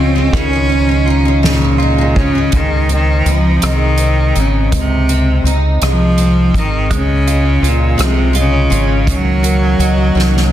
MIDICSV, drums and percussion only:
0, 0, Header, 1, 2, 480
1, 0, Start_track
1, 0, Tempo, 727273
1, 225, Time_signature, 6, 3, 24, 8
1, 6945, End_track
2, 0, Start_track
2, 0, Title_t, "Drums"
2, 221, Note_on_c, 9, 36, 105
2, 221, Note_on_c, 9, 51, 69
2, 287, Note_off_c, 9, 36, 0
2, 287, Note_off_c, 9, 51, 0
2, 462, Note_on_c, 9, 51, 39
2, 528, Note_off_c, 9, 51, 0
2, 703, Note_on_c, 9, 51, 44
2, 769, Note_off_c, 9, 51, 0
2, 941, Note_on_c, 9, 51, 62
2, 951, Note_on_c, 9, 38, 97
2, 1007, Note_off_c, 9, 51, 0
2, 1017, Note_off_c, 9, 38, 0
2, 1177, Note_on_c, 9, 51, 37
2, 1243, Note_off_c, 9, 51, 0
2, 1427, Note_on_c, 9, 36, 83
2, 1493, Note_off_c, 9, 36, 0
2, 1664, Note_on_c, 9, 42, 74
2, 1669, Note_on_c, 9, 36, 90
2, 1730, Note_off_c, 9, 42, 0
2, 1735, Note_off_c, 9, 36, 0
2, 1910, Note_on_c, 9, 42, 43
2, 1976, Note_off_c, 9, 42, 0
2, 2152, Note_on_c, 9, 42, 44
2, 2218, Note_off_c, 9, 42, 0
2, 2390, Note_on_c, 9, 42, 67
2, 2399, Note_on_c, 9, 37, 92
2, 2456, Note_off_c, 9, 42, 0
2, 2465, Note_off_c, 9, 37, 0
2, 2624, Note_on_c, 9, 42, 42
2, 2690, Note_off_c, 9, 42, 0
2, 2875, Note_on_c, 9, 42, 35
2, 2941, Note_off_c, 9, 42, 0
2, 3117, Note_on_c, 9, 36, 81
2, 3118, Note_on_c, 9, 42, 66
2, 3183, Note_off_c, 9, 36, 0
2, 3184, Note_off_c, 9, 42, 0
2, 3361, Note_on_c, 9, 42, 49
2, 3427, Note_off_c, 9, 42, 0
2, 3608, Note_on_c, 9, 42, 41
2, 3674, Note_off_c, 9, 42, 0
2, 3839, Note_on_c, 9, 42, 65
2, 3848, Note_on_c, 9, 37, 86
2, 3905, Note_off_c, 9, 42, 0
2, 3914, Note_off_c, 9, 37, 0
2, 4077, Note_on_c, 9, 42, 40
2, 4143, Note_off_c, 9, 42, 0
2, 4319, Note_on_c, 9, 36, 79
2, 4325, Note_on_c, 9, 42, 38
2, 4385, Note_off_c, 9, 36, 0
2, 4391, Note_off_c, 9, 42, 0
2, 4559, Note_on_c, 9, 36, 84
2, 4560, Note_on_c, 9, 42, 74
2, 4625, Note_off_c, 9, 36, 0
2, 4626, Note_off_c, 9, 42, 0
2, 4802, Note_on_c, 9, 42, 42
2, 4868, Note_off_c, 9, 42, 0
2, 5044, Note_on_c, 9, 42, 44
2, 5110, Note_off_c, 9, 42, 0
2, 5274, Note_on_c, 9, 42, 63
2, 5284, Note_on_c, 9, 37, 96
2, 5340, Note_off_c, 9, 42, 0
2, 5350, Note_off_c, 9, 37, 0
2, 5510, Note_on_c, 9, 42, 45
2, 5576, Note_off_c, 9, 42, 0
2, 5754, Note_on_c, 9, 42, 38
2, 5820, Note_off_c, 9, 42, 0
2, 5988, Note_on_c, 9, 36, 91
2, 5990, Note_on_c, 9, 42, 79
2, 6054, Note_off_c, 9, 36, 0
2, 6056, Note_off_c, 9, 42, 0
2, 6231, Note_on_c, 9, 42, 50
2, 6297, Note_off_c, 9, 42, 0
2, 6470, Note_on_c, 9, 42, 42
2, 6536, Note_off_c, 9, 42, 0
2, 6723, Note_on_c, 9, 38, 43
2, 6789, Note_off_c, 9, 38, 0
2, 6842, Note_on_c, 9, 38, 42
2, 6908, Note_off_c, 9, 38, 0
2, 6945, End_track
0, 0, End_of_file